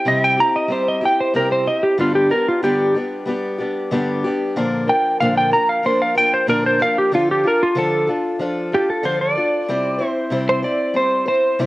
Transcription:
0.05 C3 G3 C4 E4 G4 D#5
0.24 G5
0.37 C4 E4 G4 A#5
0.56 D#5
0.68 G3 C4 E4 G4
0.72 C5
0.88 D#5
1.01 C4 E4 G4
1.05 G5
1.20 C5
1.34 C3 G3 C4 E4 G4 A#4
1.52 C5
1.66 C4 E4 G4 D#5
1.83 G4
1.98 G2 D3 G3 B3 D4 F4 G4
2.15 G4
2.30 G3 B3 D4 G4 A#4
2.48 F4
2.62 G2 D3 G3 B3 D4 G4
2.94 G3 B3 D4 G4
3.26 G3 B3 D4 G4
3.59 G3 B3 D4 G4
3.91 G2 D3 G3 B3 D4 G4
4.24 G3 B3 D4 G4
4.56 A#2 D3 F3 A#3 D4 A#4
4.87 F3 A#3 D4 A#4 G5
5.20 A#2 D3 F3 A#3 D4 A#4 F5
5.37 G5
5.51 F3 A#3 D4 A#4 A#5
5.69 F5
5.83 F3 A#3 D4 A#4 C5
6.02 F5
6.15 F3 A#3 D4 A#4 G5
6.34 C5
6.47 A#2 D3 F3 A#3 D4 A#4
6.66 C5
6.79 F3 A#3 D4 A#4 F5
6.98 G4
7.12 D3 F3 D4 F4 A4
7.31 G4
7.43 D4 F4 A4
7.47 A#4
7.63 F4
7.75 D3 F3 D4 F4 A4
8.07 D4 F4 A4
8.39 F3 D4 F4 A4
8.72 D4 F4 G4 A4
8.90 A4
9.03 D3 F3 D4 F4 A4 C5
9.21 D5
9.35 D4 F4 A4
9.69 C3 G3 C4 E4 C5
9.99 C4 E4 C5
10.09 C5
10.30 C3 G3 C4 E4 C5
10.49 C5
10.63 C4 E4 C5 D5
10.94 G3 C4 E4 C5
11.26 C4 E4 C5
11.59 C3 G3 C4 E4 C5

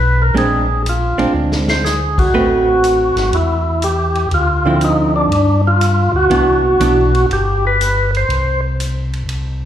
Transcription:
Already playing: B1 B4
0.22 A#4
0.34 A#1 G#3 C4 D4, ride
0.38 G#4
0.86 F4, hi-hat pedal, ride
1.18 A#1 G#3 C4 D4, ride
1.34 D2
1.52 snare
1.68 C5, snare
1.85 G#4, snare, hi-hat pedal
2.18 F#4, kick, crash
2.32 A1 A3 C4 B4
2.84 hi-hat pedal, ride
3.16 G#1, snare, ride
3.31 E2 E4, ride
3.82 G4, hi-hat pedal, ride
4.15 ride
4.31 D2 F4, ride
4.66 D3 F3 C4 E4
4.81 D#4, hi-hat pedal, ride
5.16 D4
5.30 G2, ride
5.67 F4
5.81 hi-hat pedal, ride
6.13 D2 F#4
6.30 C2 E3 B3 D4, ride
6.80 B1 E3 B3 D4, hi-hat pedal, ride
7.15 ride
7.30 G1 G4, ride
7.67 B4
7.81 hi-hat pedal, ride
8.14 C5, ride
8.29 C2, ride
8.80 hi-hat pedal, ride
9.13 ride
9.26 C2, ride

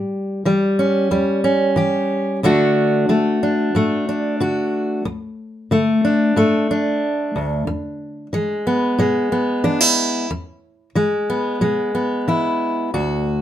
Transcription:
Already playing: A2 G3
0.45 E3 G3
0.79 C#4
1.11 E2 G3
1.44 C#4
1.76 E3 G4
2.43 D2 D3 A3 D4 F#4
3.09 D3 A3
3.43 D4
3.75 A2 A3
4.09 D4
4.40 D3 F#4
5.05 D2
5.71 D3 A3
6.05 D4
6.36 A2 A3
6.71 D4
7.36 D2
7.67 E2
8.33 E3 G#3
8.67 B3
8.98 B2 G#3
9.32 B3
9.64 E3 D4
9.81 E4
10.31 E2
10.95 E3 G#3
11.30 B3
11.61 B2 G#3
11.95 B3
12.28 E3 E4
12.94 D2 F#4

